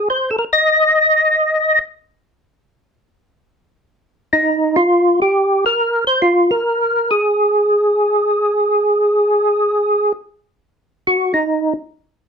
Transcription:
X:1
M:4/4
L:1/16
Q:"Swing" 1/4=137
K:Ab
V:1 name="Tonewheel organ"
c3/2 =A/2 B2 e12 | z16 | z6 E4 F4 G2- | G2 B4 c2 F2 B6 |
A16- | A12 z4 | z4 _G2 E4 z6 |]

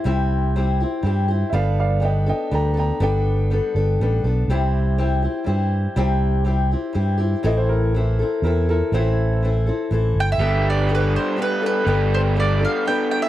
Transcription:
X:1
M:3/4
L:1/16
Q:1/4=122
K:Gmix
V:1 name="Tonewheel organ"
z12 | z12 | z12 | z12 |
z12 | z12 | z12 | [Agb]12- |
[Agb]12 |]
V:2 name="Upright piano"
z12 | [def]2 [df]2 [_eg]2 [eg]2 [g_b]2 [gb]2 | g8- g2 z2 | z12 |
z12 | _e c _B6 B2 B2 | c4 z8 | z12 |
z12 |]
V:3 name="Mandolin"
z12 | z12 | z12 | z12 |
z12 | z12 | z8 z2 g e- | e2 d2 B2 c2 B2 B2- |
B2 c2 d2 f2 g2 g e |]
V:4 name="Steel-string acoustic guitar"
[C,G,CEG]4 [G,CEG]2 [CEG]2 [G,CEG]2 [CEG]2 | [G,B,DA]4 [G,B,DA]2 [B,DA]2 [G,B,DA]2 [B,DA]2 | [G,B,DA]4 [G,B,DA]2 [B,DA]2 [G,B,DA]2 [B,DA]2 | [C,G,CEG]4 [G,CEG]2 [CEG]2 [G,CEG]4 |
[C,G,CEG]4 [G,CEG]2 [CEG]2 [G,CEG]2 [CEG]2 | [A,,E,CEA]4 [E,CEA]2 [CEA]2 [E,CEA]2 [CEA]2 | [A,,E,CEA]4 [E,CEA]2 [CEA]2 [E,CEA]4 | [G,B,DA]4 [G,B,DA]4 [G,B,DA]2 [B,DA]2 |
[G,B,DA]4 [G,B,DA]2 [B,DA]2 [G,B,DA]4 |]
V:5 name="Overdriven electric guitar"
z12 | z12 | z12 | z12 |
z12 | z12 | z12 | [G,B,DG]12 |
[G,B,DG]12 |]
V:6 name="Fingered electric bass" clef=bass
C,,8 G,,4 | G,,,8 D,,4 | G,,,6 G,,,2 A,,,2 B,,,2 | C,,8 G,,4 |
C,,8 G,,4 | A,,,8 E,,4 | A,,,8 A,,,2 G,,,2 | G,,,8 z4 |
G,,,8 z4 |]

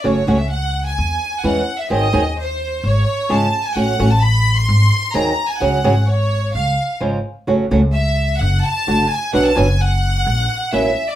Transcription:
X:1
M:4/4
L:1/16
Q:1/4=129
K:F#m
V:1 name="Violin section"
c3 e f3 g4- g f3 e | ^d4 ^B4 c4 a3 g | f3 a b3 ^b4- b ^a3 g | f4 c4 ^e4 z4 |
z4 e4 f2 a4 g2 | f a g2 f8 e3 d |]
V:2 name="Nylon-string guitar"
[C,F,A,CF]2 [C,F,A,CF]2 z8 [E,G,CE]2 z2 | [^D,F,^B,^DG]2 [D,F,B,DG]2 z8 [C,G,C^EG]2 z2 | [A,CF]2 [A,CF]2 z8 [^D,F,^B,^DG]2 z2 | [C,F,CFG]2 [C,F,CFG]2 z8 [C,^E,G,C^E]2 z2 |
[C,F,A,CF]2 [C,F,A,CF]2 z8 [D,A,DF]2 z2 | [B,,F,B,DF]2 [B,,F,B,DF]2 z8 [F,^A,CE]2 z2 |]
V:3 name="Upright bass" clef=bass
F,,,2 C,,6 E,,2 z2 E,,2 z2 | G,,,2 ^D,,6 G,,,2 z2 G,,,2 z2 | A,,,2 A,,,6 G,,,2 z2 ^D,,2 z2 | C,,2 G,,,6 C,,2 z2 G,,,2 z2 |
F,,,2 C,,6 F,,,2 z2 F,,,2 z2 | B,,,2 F,,,6 ^A,,,2 z2 A,,,2 z2 |]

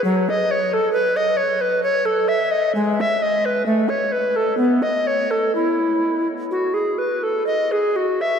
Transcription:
X:1
M:3/4
L:1/16
Q:1/4=64
K:E
V:1 name="Recorder"
F, d c A B d c B c A e d | G, e d B A, c B A B, d c A | E4 F G B A d G F e |]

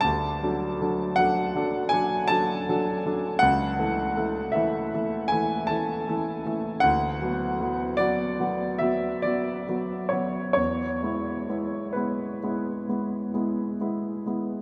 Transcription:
X:1
M:9/8
L:1/8
Q:3/8=52
K:A
V:1 name="Grand piano"
a3 f2 g a3 | f3 e2 g a3 | f3 d2 e d2 c | c3 B3 z3 |]
V:2 name="Grand piano"
D,, [F,DA] [F,DA] [F,DA] [F,DA] [F,DA] [F,DA] [F,DA] [F,DA] | C,, [E,A,A] [E,A,A] [E,A,A] [E,A,A] [E,A,A] [E,A,A] [E,A,A] [E,A,A] | D,, [F,B,F] [F,B,F] [F,B,F] [F,B,F] [F,B,F] [F,B,F] [F,B,F] [F,B,F] | E,, [G,B,E] [G,B,E] [G,B,E] [G,B,E] [G,B,E] [G,B,E] [G,B,E] [G,B,E] |]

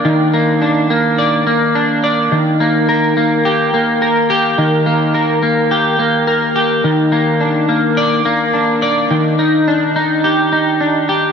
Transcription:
X:1
M:4/4
L:1/8
Q:1/4=106
K:Eb
V:1 name="Clean electric guitar"
[E,B,Dd] B, D B, d B, D d | E, B, B B, G B, B G | E, B, B B, G B, B G | E, B, D B, d B, D d |
E, E D E G E D G |]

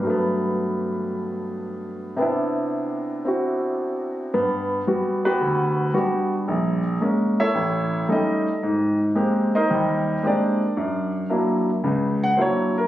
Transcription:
X:1
M:4/4
L:1/8
Q:"Swing" 1/4=112
K:G
V:1 name="Grand piano"
[G,,F,A,B,]8 | [C,B,DE]4 [CEF]4 | z3 [B,FGB]3 [G,B,DG]2- | [G,B,DG] z2 [EA_de]3 [GA^d]2- |
[GA^d] z2 [_E_Bc_e]3 [=D=d]2- | [Dd] z4 f [c^c] ^A |]
V:2 name="Grand piano"
z8 | z8 | [G,,B,]2 [G,B,F] z D,,2 [G,B,F] z | _B,,,2 [_A,_B,_D] z =A,,,2 [G,=A,^C^D] z |
_A,,2 [_A,_B,CG] z [_E,,G,]2 [A,B,CG] z | F,,2 [F,^A,DE] z [^C,,^C,]2 [F,A,DE] z |]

